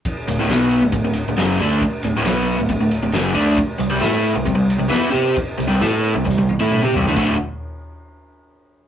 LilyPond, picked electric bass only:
\new Staff \with { instrumentName = "Picked electric bass" } { \clef bass \time 4/4 \key d \mixolydian \tempo 4 = 135 r8 d,,16 d,,16 b,,8. d,,16 d,,16 d,,8 d,,16 fis,,8 d,8 | r8 d,,16 d,,16 b,,8. d,,16 d,,16 d,,8 d,,16 fis,,8 d,8 | r8 c,16 c,16 a,8. c,16 c,16 c,8 c,16 e,8 c8 | r8 c,16 c,16 a,8. c,16 c,16 c,8 a,8 c16 c,16 d,16 |
d,,8 r2. r8 | }